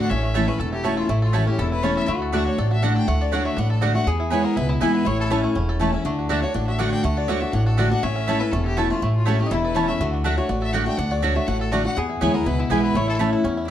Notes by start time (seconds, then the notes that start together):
Already playing: A3 F#4 A4 F#5
0.00 D4 F#4
0.10 A1 A2 C#4 E5
0.23 A3
0.34 E3 A3 C#4 E4 C#5 A5
0.48 A3 C#4 E4 B4
0.59 E1 E2 A4
0.72 E4 G4
0.83 E3 A3 C#4 E4 F#4 C#5 A5
0.97 F4 A4
1.09 A1 A2 A3 E4
1.22 F4 A4
1.33 E3 A3 C#4 E4 F#4 C#5 A5
1.47 C#4 E4 G4
1.58 E1 E2 E4 A4
1.71 E4 B4
1.83 E3 A3 C#4 E4 C#5 A5
1.97 A4 E5
2.08 D2 D3 A3 F#4
2.22 A4
2.32 D3 A3 D4 F#4 D5 E5 F#5
2.46 D4 C#5
2.58 A1 A2 A4 D5
2.71 F#4 E5
2.82 D3 A3 D4 F#4 D5 F#5
2.96 A4 G5
3.08 D2 D3 A3 F#5
3.21 D4 D5
3.32 D3 A3 D4 F#4 C#5 D5 F#5
3.41 E4
3.45 A3 E5
3.57 A1 A2 D4 F#5
3.70 A4
3.81 D3 A3 D4 F#4 D5 F#5
3.95 A3 D4 F#4 F#5
4.07 E2 B3 G#4
4.20 E4
4.30 E3 G#3 B3 E4 B4 C#5 G#5
4.44 B3 A#4
4.56 C#2 B2 E4 B4
4.69 E4
4.80 B1 E3 G#3 B3 E4 G#4 B4 G#5
4.94 B3 B4
5.05 A1 A2 A3 E4 C#5
5.20 C#4 A4
5.30 E3 A3 C#4 E4 C#5 A5
5.44 A3
5.55 E1 E2 C#4
5.69 A4
5.79 E3 A3 C#4 E4 C#5 A5
5.92 C#4 E4
6.05 D2 D3 A3 D4
6.19 F#4
6.29 D3 A3 D4 F#4 A4 D5 E5 F#5
6.42 D4 F#4 C#5
6.54 A1 A2 D4 D5
6.67 F#4 E5
6.78 D3 A3 D4 F#4 A4 D5 F#5
6.91 D4 G5
7.03 D2 D3 A3 F#5
7.17 F#4 D5
7.28 D3 A3 D4 F#4 A4 C#5 D5 F#5
7.41 D4 F#4 E5
7.53 A1 A2 D4 F#5
7.66 F#4 A4
7.77 D3 A3 D4 F#4 A4 D5 F#5
7.91 D4 F#4 F#5
8.03 A1 A2 A3 C#4 E5
8.16 C#4
8.27 E3 A3 C#4 E4 C#5 A5
8.40 C#4 E4 A4 B4
8.52 E1 E2 A3 A4
8.65 E4 G4
8.77 E3 A3 C#4 E4 F#4 A4 C#5 A5
8.90 A3 C#4 E4 F4
9.02 A1 A2 A3 E4
9.15 F4
9.25 E3 A3 C#4 E4 F#4 C#5 A5
9.39 A3 C#4 E4 G4
9.46 D#4
9.51 E1 E2 E4 A4
9.63 A4 B4
9.75 E3 A3 C#4 E4 C#5 A5
9.88 A3 C#4 E4 E5
10.00 D2 D3 A3 F#4
10.14 D4
10.24 D3 A3 D4 F#4 D5 E5 F#5
10.37 A3 D4 F#4 C#5
10.49 A1 A2 F#4 D5
10.62 A4 E5
10.73 D3 A3 D4 F#4 D5 F#5
10.85 A3 D4 F#4 G5
10.97 D2 D3 D4 F#5
11.11 F#4 D5
11.22 D3 A3 D4 F#4 A4 C#5 D5 F#5
11.35 A3 D4 F#4 E5
11.47 A1 A2 F#4 F#5
11.61 A4
11.72 D3 A3 D4 F#4 D5 F#5
11.85 D4 F#4 F#5
11.96 E2 B3 G#4
12.09 E4
12.21 D2 E3 G#3 B3 E4 B4 C#5 G#5
12.34 B3 E4 A#4
12.46 C#2 B2 E4 B4
12.59 E4
12.70 B1 E3 G#3 B3 E4 G#4 B4 G#5
12.84 B3 B4
12.94 A1 A2 A3 E4 C#5
13.08 E4 A4
13.19 E3 A3 C#4 E4 A4 C#5 A5
13.33 E4
13.44 E2 C#4
13.57 E4
13.65 D4